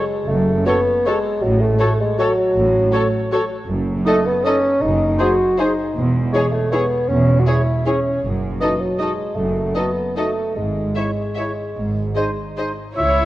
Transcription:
0.00 0.30 G#3 medium
0.28 0.60 F#1 medium
0.28 0.60 F#2 medium
0.28 0.66 A3 medium
0.66 1.08 B3 medium
0.66 0.74 F#4 soft
0.66 0.81 A4 soft
0.66 0.75 A4 soft
0.66 0.75 C#5 soft
0.66 0.81 C#5 soft
1.06 1.44 G#3 medium
1.06 1.14 F#4 soft
1.06 1.20 A4 soft
1.06 1.15 A4 soft
1.06 1.19 C#5 soft
1.06 1.14 C#5 soft
1.42 1.73 A1 medium
1.42 1.74 A2 medium
1.42 1.63 F#3 medium
1.61 2.00 A3 medium
1.79 1.88 F#4 soft
1.79 1.94 A4 soft
1.79 1.88 A4 soft
1.79 1.94 C#5 soft
1.79 1.88 C#5 soft
2.00 2.18 G#3 medium
2.18 3.48 F#3 medium
2.18 2.26 F#4 soft
2.18 2.33 A4 soft
2.18 2.28 A4 soft
2.18 2.27 C#5 soft
2.18 2.32 C#5 soft
2.55 2.86 A1 medium
2.55 2.86 A2 medium
2.92 3.00 F#4 soft
2.92 3.01 A4 soft
2.92 3.08 A4 soft
2.92 3.01 C#5 medium
2.92 3.08 C#5 soft
3.32 3.40 F#4 soft
3.32 3.45 A4 soft
3.32 3.41 A4 soft
3.32 3.40 C#5 medium
3.32 3.46 C#5 soft
3.68 4.00 F#1 medium
3.68 3.99 F#2 medium
4.06 4.27 A3 medium
4.06 4.14 D#4 soft
4.06 4.21 A4 soft
4.06 4.15 A4 soft
4.06 4.20 D#5 soft
4.06 4.15 D#5 soft
4.26 4.46 B3 medium
4.44 4.83 C#4 medium
4.44 4.54 D#4 soft
4.44 4.54 A4 soft
4.44 4.60 A4 soft
4.44 4.58 D#5 soft
4.44 4.53 D#5 soft
4.82 5.13 F#1 medium
4.82 5.13 F#2 medium
4.82 5.22 D#4 medium
5.19 5.27 D#4 soft
5.19 5.60 F#4 medium
5.19 5.27 G#4 soft
5.19 5.35 G#4 soft
5.19 5.33 C5 soft
5.19 5.28 C5 soft
5.58 5.66 D#4 soft
5.58 5.96 D#4 medium
5.58 5.67 G#4 soft
5.58 5.74 G#4 soft
5.58 5.67 C5 soft
5.58 5.73 C5 soft
5.96 6.27 E1 medium
5.96 6.27 E2 medium
6.33 6.54 G#3 medium
6.33 6.41 E4 soft
6.33 6.48 G#4 soft
6.33 6.44 G#4 soft
6.33 6.47 C#5 soft
6.33 6.43 C#5 soft
6.53 6.73 A3 medium
6.72 7.10 B3 medium
6.72 6.80 E4 soft
6.72 6.81 G#4 soft
6.72 6.87 G#4 soft
6.72 6.86 C#5 soft
6.72 6.81 C#5 soft
7.09 7.40 E1 medium
7.09 7.41 E2 medium
7.09 7.41 C#4 medium
7.40 7.49 F#4 medium
7.47 7.55 E4 soft
7.47 7.86 E4 medium
7.47 7.61 G#4 soft
7.47 7.55 G#4 soft
7.47 7.55 C#5 soft
7.47 7.62 C#5 soft
7.86 8.23 C#4 medium
7.86 7.95 E4 soft
7.86 8.00 G#4 soft
7.86 7.95 G#4 soft
7.86 7.94 C#5 soft
7.86 8.00 C#5 soft
8.23 8.54 F#1 soft
8.23 8.55 F#2 medium
8.61 8.82 E3 medium
8.61 8.69 D#4 soft
8.61 8.77 F#4 soft
8.61 8.70 A4 soft
8.61 8.75 D#5 soft
8.61 8.70 D#5 soft
8.80 9.01 F#3 medium
8.99 9.37 G#3 medium
8.99 9.08 D#4 soft
8.99 9.14 F#4 soft
8.99 9.10 A4 soft
8.99 9.13 D#5 soft
8.99 9.08 D#5 soft
9.36 9.69 F#1 soft
9.36 9.69 F#2 soft
9.36 9.77 A3 medium
9.75 10.16 B3 medium
9.75 9.83 D#4 soft
9.75 9.92 F#4 soft
9.75 9.84 A4 soft
9.75 9.83 D#5 soft
9.75 9.90 D#5 soft
10.16 10.55 A3 medium
10.16 10.24 D#4 soft
10.16 10.32 F#4 soft
10.16 10.25 A4 soft
10.16 10.24 D#5 soft
10.16 10.31 D#5 soft
10.55 10.89 G#1 soft
10.55 10.89 G#2 soft
10.55 12.75 G#3 medium
10.95 11.12 E4 soft
10.95 11.04 G#4 soft
10.95 11.11 C#5 soft
10.95 11.05 C#5 soft
10.95 11.03 E5 soft
11.35 11.52 E4 soft
11.35 11.45 G#4 soft
11.35 11.45 C#5 soft
11.35 11.53 C#5 soft
11.35 11.43 E5 soft
11.76 12.09 G#1 soft
11.76 12.10 G#2 soft
12.16 12.31 D#4 soft
12.16 12.24 G#4 soft
12.16 12.31 C5 soft
12.16 12.24 C5 soft
12.16 12.24 D#5 soft
12.56 12.73 D#4 soft
12.56 12.66 G#4 soft
12.56 12.64 C5 soft
12.56 12.73 C5 soft
12.56 12.66 D#5 soft
12.96 13.25 C#2 medium
12.96 13.25 E4 medium
12.96 13.25 C#5 medium
12.96 13.25 E5 medium

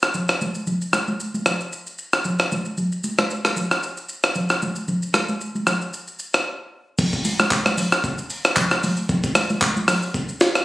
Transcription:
0.03 cross-stick medium
0.03 shaker medium
0.14 low conga medium
0.14 shaker medium
0.29 cross-stick medium
0.29 shaker medium
0.41 high conga medium
0.41 low conga medium
0.41 shaker medium
0.55 shaker medium
0.67 low conga medium
0.67 shaker medium
0.82 shaker medium
0.93 cross-stick medium
0.93 high conga medium
0.93 shaker loud
1.08 high conga medium
1.08 shaker soft
1.20 shaker medium
1.34 high conga medium
1.34 shaker soft
1.46 cross-stick medium
1.46 low conga medium
1.46 shaker loud
1.61 shaker soft
1.73 shaker medium
1.87 shaker medium
1.99 shaker medium
2.13 cross-stick medium
2.13 shaker medium
2.25 low conga medium
2.25 shaker medium
2.39 cross-stick medium
2.39 shaker soft
2.52 high conga medium
2.52 low conga medium
2.52 shaker medium
2.66 shaker medium
2.78 low conga medium
2.78 shaker medium
2.92 shaker medium
3.04 high conga medium
3.04 shaker loud
3.18 cross-stick medium
3.18 high conga medium
3.18 shaker soft
3.31 shaker medium
3.45 cross-stick medium
3.45 high conga medium
3.45 shaker soft
3.56 low conga medium
3.56 shaker loud
3.71 cross-stick medium
3.71 shaker soft
3.84 shaker medium
3.98 shaker medium
4.09 shaker medium
4.24 cross-stick medium
4.24 shaker medium
4.35 low conga medium
4.35 shaker medium
4.50 cross-stick medium
4.50 shaker medium
4.62 high conga medium
4.62 low conga medium
4.62 shaker medium
4.76 shaker medium
4.88 low conga medium
4.88 shaker medium
5.03 shaker medium
5.14 cross-stick medium
5.14 high conga medium
5.14 shaker loud
5.29 high conga medium
5.29 shaker soft
5.41 shaker medium
5.55 high conga medium
5.55 shaker soft
5.67 cross-stick medium
5.67 low conga medium
5.67 shaker loud
5.82 shaker soft
5.94 shaker medium
6.08 shaker medium
6.20 shaker medium
6.34 cross-stick medium
6.34 shaker medium
6.99 kick loud
6.99 crash loud
6.99 low conga medium
6.99 shaker medium
7.13 kick loud
7.13 shaker medium
7.25 open hi-hat medium
7.25 high conga medium
7.25 shaker loud
7.39 cross-stick medium
7.39 high conga medium
7.39 shaker medium
7.51 kick loud
7.51 clap medium
7.51 shaker medium
7.66 cross-stick medium
7.66 high conga medium
7.66 shaker medium
7.77 open hi-hat medium
7.77 low conga medium
7.77 shaker loud
7.92 cross-stick loud
7.92 shaker medium
8.04 kick loud
8.04 shaker medium
8.19 shaker medium
8.30 open hi-hat soft
8.30 shaker medium
8.45 cross-stick loud
8.45 shaker medium
8.56 kick loud
8.56 clap loud
8.56 high conga medium
8.56 low conga medium
8.56 shaker medium
8.71 cross-stick loud
8.71 shaker medium
8.84 open hi-hat medium
8.84 high conga medium
8.84 low conga medium
8.84 shaker loud
8.97 shaker medium
9.09 kick loud
9.09 low conga medium
9.09 shaker medium
9.24 kick loud
9.24 shaker medium
9.35 cross-stick loud
9.35 open hi-hat medium
9.35 high conga medium
9.35 shaker loud
9.50 high conga medium
9.50 shaker medium
9.62 kick loud
9.62 clap loud
9.62 shaker medium
9.76 high conga medium
9.76 shaker medium
9.88 cross-stick loud
9.88 open hi-hat medium
9.88 low conga medium
9.88 shaker loud
10.03 shaker medium
10.14 kick loud
10.14 shaker medium
10.29 shaker medium
10.41 snare medium
10.41 open hi-hat soft
10.41 shaker medium
10.55 cross-stick loud
10.55 shaker medium

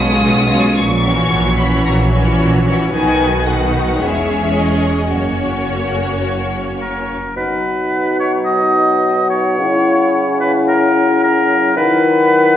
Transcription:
0.00 0.16 B1 medium
0.00 0.16 B2 medium
0.00 0.49 G#3 medium
0.00 0.49 C#4 medium
0.00 0.47 F4 medium
0.00 0.47 C#5 soft
0.00 0.74 D#6 medium
0.22 0.70 B1 medium
0.22 0.70 B2 medium
0.48 0.76 G#3 soft
0.48 0.76 C#4 soft
0.48 0.76 F4 medium
0.48 0.75 C#5 medium
0.76 1.24 A#1 medium
0.76 1.24 A#2 medium
0.76 1.56 C#6 medium
1.03 1.57 E3 medium
1.03 1.57 C#4 soft
1.03 1.56 F#4 soft
1.03 1.56 C#5 soft
1.30 1.79 A#1 medium
1.30 1.79 A#2 medium
1.58 2.11 E3 soft
1.58 2.11 C#4 soft
1.58 2.11 F#4 soft
1.58 2.10 C#5 soft
1.58 1.85 B5 medium
1.85 2.33 A#1 medium
1.85 2.33 A#2 medium
1.85 1.93 A#5 medium
2.12 2.64 E3 medium
2.12 2.64 C#4 medium
2.12 2.65 F#4 soft
2.12 2.65 C#5 soft
2.39 2.87 A#1 soft
2.39 2.87 A#2 medium
2.66 2.92 E3 soft
2.66 2.92 C#4 soft
2.66 2.91 F#4 soft
2.66 2.93 C#5 soft
2.92 3.97 B1 medium
2.92 3.97 B2 soft
2.92 3.43 D#3 medium
2.92 3.43 D#4 medium
2.92 3.43 F#4 soft
2.92 3.43 B4 medium
2.92 3.43 G#5 medium
3.47 4.00 D#3 medium
3.47 4.00 D#4 soft
3.47 4.00 F#4 soft
3.47 4.00 B4 soft
3.47 4.01 F#5 medium
4.01 5.10 E1 soft
4.01 5.10 E2 soft
4.01 5.12 G#3 soft
4.01 5.11 C#4 soft
4.01 5.10 G#4 soft
4.01 5.11 C#5 soft
4.01 4.56 E5 medium
4.57 5.12 D#5 soft
5.12 7.16 F#1 soft
5.12 7.16 F#2 soft
5.12 7.12 A#3 soft
5.12 7.12 C#4 soft
5.12 7.16 F#4 soft
5.12 7.12 C#5 soft
5.12 6.81 C#5 soft
6.82 7.33 A#4 soft
7.36 9.55 B2 soft
7.36 11.73 F#3 soft
7.36 9.55 D#4 soft
7.36 8.19 B4 medium
7.36 11.72 F#5 soft
8.20 8.32 C#5 soft
8.46 9.28 D#5 medium
9.30 10.38 C#5 medium
9.59 11.73 C#3 soft
9.59 11.73 E4 soft
9.59 12.57 E4 soft
10.40 10.53 B4 soft
10.68 11.21 A#4 medium
11.24 11.76 A#4 medium
11.77 12.57 D#3 medium
11.77 12.57 F#3 soft
11.77 12.57 D#4 soft
11.77 12.57 B4 medium
11.77 12.57 F#5 soft

